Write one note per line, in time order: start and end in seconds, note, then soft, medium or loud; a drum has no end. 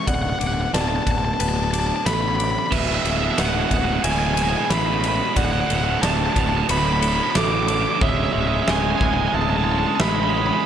0.00 2.68 B3 medium
0.07 0.33 D1 medium
0.07 1.73 B2 medium
0.07 2.70 D3 medium
0.07 2.70 F#3 medium
0.07 2.70 A3 medium
0.07 2.70 F#4 medium
0.07 0.71 D5 medium
0.07 0.14 F#5 medium
0.07 kick medium
0.07 ride medium
0.15 0.22 F#5 medium
0.23 0.29 F#5 medium
0.30 0.38 F#5 medium
0.39 0.66 D1 medium
0.39 1.72 D4 medium
0.39 0.47 F#5 medium
0.39 ride medium
0.47 0.53 F#5 medium
0.53 0.61 F#5 medium
0.61 0.69 F#5 medium
0.73 0.98 D1 medium
0.73 2.05 B3 medium
0.73 1.39 D5 medium
0.73 0.81 A5 medium
0.73 snare medium
0.73 ride medium
0.81 0.88 A5 medium
0.88 0.96 A5 medium
0.96 1.02 A5 medium
1.03 2.72 F#4 medium
1.03 1.10 A5 medium
1.03 kick medium
1.07 1.32 D1 medium
1.07 ride medium
1.11 1.18 A5 medium
1.18 1.24 A5 medium
1.25 1.32 A5 medium
1.34 1.40 A5 medium
1.39 1.90 D1 medium
1.39 4.04 B4 medium
1.39 2.06 B4 medium
1.39 1.48 A5 medium
1.39 ride medium
1.49 1.56 A5 medium
1.56 1.64 A5 medium
1.64 1.71 A5 medium
1.71 2.37 D4 medium
1.71 1.79 A5 medium
1.71 ride medium
1.80 1.86 A5 medium
1.87 1.95 A5 medium
1.96 2.04 A5 medium
2.05 2.56 A1 medium
2.05 3.37 B3 medium
2.05 2.72 A4 medium
2.05 2.13 B5 medium
2.05 snare loud
2.05 ride medium
2.14 2.21 B5 medium
2.21 2.28 B5 medium
2.28 2.36 B5 medium
2.36 2.72 D4 medium
2.36 2.44 B5 medium
2.36 ride medium
2.44 2.50 B5 medium
2.51 2.58 B5 medium
2.59 2.66 B5 medium
2.67 2.74 B5 medium
2.71 2.97 D1 medium
2.71 2.79 E2 medium
2.71 4.37 E2 medium
2.71 5.34 B2 medium
2.71 2.78 B2 medium
2.71 5.34 E3 medium
2.71 5.34 G#3 medium
2.71 5.34 E4 medium
2.71 5.34 G#4 medium
2.71 3.38 B4 medium
2.71 2.79 E5 medium
2.71 kick loud
2.71 crash medium
2.79 2.85 E2 medium
2.79 2.86 B2 medium
2.79 2.87 E5 medium
2.86 2.93 E2 medium
2.86 2.94 B2 medium
2.86 2.95 E5 medium
2.94 3.02 E2 medium
2.94 3.02 B2 medium
2.94 3.02 E5 medium
3.02 3.30 D1 medium
3.02 3.10 E2 medium
3.02 3.10 B2 medium
3.02 4.36 G#3 medium
3.02 3.10 E5 medium
3.02 ride medium
3.10 3.17 E2 medium
3.10 3.18 B2 medium
3.10 3.17 E5 medium
3.17 3.25 E2 medium
3.17 3.26 B2 medium
3.17 3.24 E5 medium
3.25 3.33 E2 medium
3.25 3.33 B2 medium
3.25 3.32 E5 medium
3.33 3.40 E2 medium
3.33 3.40 B2 medium
3.33 3.40 E5 medium
3.37 3.63 D1 medium
3.37 3.48 E2 medium
3.37 3.48 B2 medium
3.37 4.68 E3 medium
3.37 4.02 E5 medium
3.37 3.45 F#5 medium
3.37 snare medium
3.37 ride medium
3.46 3.56 E2 medium
3.46 3.57 B2 medium
3.46 3.53 F#5 medium
3.54 3.64 E2 medium
3.54 3.64 B2 medium
3.54 3.61 F#5 medium
3.61 3.72 E2 medium
3.61 3.72 B2 medium
3.61 3.69 F#5 medium
3.70 3.97 D1 medium
3.70 3.79 E2 medium
3.70 3.80 B2 medium
3.70 5.73 B3 medium
3.70 3.76 F#5 medium
3.70 kick medium
3.70 ride medium
3.77 3.88 E2 medium
3.77 3.88 B2 medium
3.77 3.85 F#5 medium
3.85 3.95 E2 medium
3.85 3.95 B2 medium
3.85 3.92 F#5 medium
3.93 4.04 E2 medium
3.93 4.03 B2 medium
3.93 4.00 F#5 medium
4.03 4.54 D1 loud
4.03 4.11 E2 medium
4.03 4.10 B2 medium
4.03 5.37 E4 medium
4.03 4.68 E5 medium
4.03 4.11 G#5 medium
4.03 ride medium
4.11 4.18 E2 medium
4.11 4.19 B2 medium
4.11 4.19 G#5 medium
4.18 4.26 E2 medium
4.18 4.27 B2 medium
4.18 4.26 G#5 medium
4.27 4.35 E2 medium
4.27 4.34 B2 medium
4.27 4.34 G#5 medium
4.34 4.42 E2 medium
4.34 4.42 B2 medium
4.34 5.02 G#3 medium
4.34 4.42 G#5 medium
4.34 ride medium
4.42 4.49 E2 medium
4.42 4.50 B2 medium
4.42 4.49 G#5 medium
4.50 4.57 E2 medium
4.50 4.58 B2 medium
4.50 4.57 G#5 medium
4.57 4.65 E2 medium
4.57 4.65 B2 medium
4.57 4.65 G#5 medium
4.65 4.74 E2 soft
4.65 4.73 B2 medium
4.65 4.73 G#5 medium
4.69 5.20 A1 medium
4.69 5.36 E3 medium
4.69 5.36 E5 medium
4.69 4.77 B5 medium
4.69 snare loud
4.69 ride medium
4.74 4.81 E2 medium
4.74 4.82 B2 medium
4.74 4.85 B5 medium
4.82 4.89 E2 medium
4.82 4.89 B2 medium
4.86 4.97 E2 medium
4.86 4.97 B2 medium
4.86 4.93 B5 medium
4.93 5.05 E2 medium
4.93 5.01 B5 medium
4.97 5.05 B2 medium
4.97 5.08 B5 medium
5.03 5.12 E2 medium
5.03 5.13 B2 medium
5.03 5.36 G#3 medium
5.03 ride medium
5.08 5.16 B5 medium
5.12 5.20 E2 soft
5.12 5.21 B2 soft
5.12 5.24 B5 medium
5.21 5.28 E2 medium
5.21 5.28 B2 medium
5.26 5.35 E2 soft
5.26 5.36 B2 soft
5.26 5.34 B5 medium
5.36 5.62 D1 medium
5.36 5.43 D2 medium
5.36 7.02 D2 medium
5.36 5.44 A2 medium
5.36 8.00 D3 medium
5.36 7.99 F#3 medium
5.36 7.99 A3 medium
5.36 10.66 B3 medium
5.36 7.99 F#4 medium
5.36 6.01 D5 medium
5.36 5.45 F#5 medium
5.36 kick loud
5.36 ride medium
5.44 5.51 D2 medium
5.44 5.52 A2 medium
5.44 5.51 F#5 medium
5.51 5.58 D2 medium
5.51 5.60 A2 medium
5.51 5.59 F#5 medium
5.58 5.66 D2 medium
5.58 5.67 A2 medium
5.58 5.67 F#5 medium
5.67 5.95 D1 medium
5.67 5.74 D2 medium
5.67 5.74 A2 medium
5.67 7.01 A3 medium
5.67 5.75 F#5 medium
5.67 ride medium
5.75 5.81 D2 medium
5.75 5.82 A2 medium
5.75 5.83 F#5 medium
5.81 5.89 D2 medium
5.81 5.90 A2 medium
5.81 5.91 F#5 medium
5.89 5.97 D2 medium
5.89 5.98 A2 medium
5.89 5.99 F#5 medium
5.98 6.05 D2 medium
5.98 6.06 A2 medium
5.98 6.69 D5 medium
5.98 6.10 A5 medium
6.03 6.28 D1 medium
6.03 6.13 D2 medium
6.03 7.34 D3 medium
6.03 snare loud
6.03 ride medium
6.07 6.13 A2 medium
6.07 6.17 A5 medium
6.13 6.21 D2 medium
6.13 6.21 A2 medium
6.17 6.29 A2 medium
6.17 6.25 A5 medium
6.22 6.29 D2 medium
6.22 6.32 A5 medium
6.29 6.36 D2 medium
6.29 6.37 A2 medium
6.29 6.40 A5 medium
6.36 6.61 D1 medium
6.36 6.44 D2 medium
6.36 6.45 A2 medium
6.36 8.05 B3 medium
6.36 kick medium
6.36 ride medium
6.41 6.49 A5 medium
6.45 6.53 D2 medium
6.45 6.52 A2 medium
6.45 6.57 A5 medium
6.53 6.59 D2 medium
6.53 6.60 A2 medium
6.58 6.68 D2 medium
6.58 6.68 A2 medium
6.58 6.65 A5 medium
6.68 7.19 D1 loud
6.68 6.75 D2 medium
6.68 6.77 A2 medium
6.68 8.01 F#4 medium
6.68 7.35 B4 medium
6.68 6.77 B5 loud
6.68 ride medium
6.76 6.83 D2 medium
6.76 6.84 A2 medium
6.76 6.85 B5 medium
6.84 6.91 D2 medium
6.84 6.91 A2 medium
6.84 6.92 B5 loud
6.91 6.99 D2 medium
6.91 6.99 A2 medium
6.91 7.00 B5 medium
6.99 7.07 D2 medium
6.99 7.07 A2 medium
6.99 7.67 A3 medium
6.99 7.08 B5 medium
6.99 ride medium
7.07 7.15 D2 medium
7.07 7.15 A2 medium
7.07 7.15 B5 medium
7.15 7.23 D2 medium
7.15 7.22 A2 medium
7.15 7.23 B5 loud
7.22 7.30 D2 medium
7.22 7.30 A2 medium
7.22 7.30 B5 medium
7.31 7.39 D2 medium
7.31 7.37 A2 medium
7.31 7.36 B5 medium
7.35 7.85 A1 medium
7.35 7.46 A2 medium
7.35 8.02 D3 medium
7.35 8.01 A4 medium
7.35 7.44 D6 loud
7.35 snare loud
7.35 ride medium
7.39 7.46 D2 medium
7.44 7.54 D2 medium
7.44 7.54 A2 medium
7.44 7.52 D6 medium
7.52 7.61 D2 medium
7.52 7.61 A2 medium
7.52 7.59 D6 medium
7.60 7.70 D2 medium
7.60 7.69 A2 medium
7.60 7.67 D6 medium
7.68 7.77 D2 medium
7.68 7.77 A2 medium
7.68 8.01 A3 medium
7.68 7.74 D6 medium
7.68 ride medium
7.74 7.85 D2 medium
7.74 7.84 A2 medium
7.74 7.82 D6 medium
7.82 7.92 D2 medium
7.82 7.93 A2 medium
7.82 7.90 D6 medium
7.91 8.00 D2 medium
7.91 8.00 A2 soft
7.91 7.99 D6 medium
8.01 8.26 D1 medium
8.01 8.09 C#3 medium
8.01 9.67 C#3 medium
8.01 10.64 C#3 medium
8.01 10.64 E3 medium
8.01 8.09 G#3 medium
8.01 10.64 G#3 medium
8.01 10.64 E4 medium
8.01 8.67 C#5 medium
8.01 8.09 E5 loud
8.01 kick loud
8.09 8.16 C#3 soft
8.09 8.17 G#3 medium
8.09 8.17 E5 medium
8.17 8.24 C#3 medium
8.17 8.24 G#3 medium
8.17 8.25 E5 medium
8.24 8.31 C#3 soft
8.24 8.32 G#3 medium
8.24 8.32 E5 medium
8.32 8.60 D1 medium
8.32 8.40 C#3 medium
8.32 8.40 G#3 medium
8.32 9.65 C#4 medium
8.32 8.39 E5 loud
8.39 8.47 C#3 soft
8.39 8.47 G#3 medium
8.39 8.47 E5 medium
8.47 8.54 C#3 medium
8.47 8.55 G#3 medium
8.47 8.54 E5 medium
8.55 8.63 C#3 medium
8.55 8.63 G#3 medium
8.55 8.62 E5 medium
8.63 8.71 C#3 medium
8.63 8.71 G#3 medium
8.63 8.70 E5 medium
8.67 8.93 D1 medium
8.67 9.98 G#3 medium
8.67 8.79 G#3 medium
8.67 9.32 E5 medium
8.67 8.76 G#5 loud
8.67 snare loud
8.72 8.78 C#3 medium
8.76 8.86 C#3 medium
8.76 8.86 G#3 medium
8.76 8.83 G#5 medium
8.83 8.94 C#3 medium
8.83 8.94 G#3 medium
8.83 8.91 G#5 medium
8.91 9.02 C#3 medium
8.91 8.98 G#5 medium
8.96 9.02 G#3 medium
8.96 9.05 G#5 medium
9.01 9.26 D1 medium
9.01 9.09 C#3 medium
9.01 9.10 G#3 medium
9.01 10.66 E4 medium
9.01 kick medium
9.06 9.17 C#3 medium
9.06 9.13 G#5 medium
9.11 9.17 G#3 medium
9.11 9.21 G#5 medium
9.17 9.25 C#3 medium
9.17 9.25 G#3 medium
9.21 9.32 C#3 medium
9.21 9.28 G#5 medium
9.26 9.32 G#3 medium
9.26 9.35 G#5 medium
9.33 9.84 D1 medium
9.33 9.41 C#3 soft
9.33 9.40 G#3 medium
9.33 9.98 E5 medium
9.33 9.42 A5 loud
9.41 9.48 C#3 medium
9.41 9.49 G#3 medium
9.41 9.49 A5 medium
9.48 9.56 C#3 soft
9.48 9.57 G#3 medium
9.48 9.56 A5 medium
9.57 9.64 C#3 medium
9.57 9.63 G#3 medium
9.57 9.64 A5 medium
9.64 9.71 C#3 medium
9.64 9.72 G#3 medium
9.64 10.32 C#4 medium
9.64 9.72 A5 medium
9.72 9.79 C#3 medium
9.72 9.80 G#3 medium
9.72 9.79 A5 medium
9.79 9.87 C#3 medium
9.79 9.87 G#3 medium
9.79 9.86 A5 medium
9.87 9.94 C#3 medium
9.87 9.95 G#3 medium
9.87 9.95 A5 medium
9.94 10.02 C#3 soft
9.94 10.03 G#3 medium
9.94 10.03 A5 medium
10.00 10.50 A1 loud
10.00 10.11 C#3 medium
10.00 10.66 G#3 medium
10.00 10.11 G#3 medium
10.00 10.66 E5 loud
10.00 10.08 B5 loud
10.00 snare loud
10.08 10.18 C#3 soft
10.08 10.19 G#3 medium
10.08 10.15 B5 medium
10.15 10.26 C#3 medium
10.15 10.23 B5 medium
10.20 10.27 G#3 medium
10.20 10.30 B5 medium
10.27 10.33 C#3 medium
10.27 10.34 G#3 medium
10.27 10.37 B5 medium
10.33 10.41 C#3 medium
10.33 10.41 G#3 medium
10.33 10.66 C#4 medium
10.38 10.49 G#3 medium
10.38 10.45 B5 medium
10.42 10.49 C#3 soft
10.46 10.57 C#3 medium
10.46 10.57 G#3 medium
10.46 10.53 B5 medium
10.54 10.65 G#3 medium
10.54 10.60 B5 medium
10.58 10.65 C#3 soft
10.58 10.66 B5 medium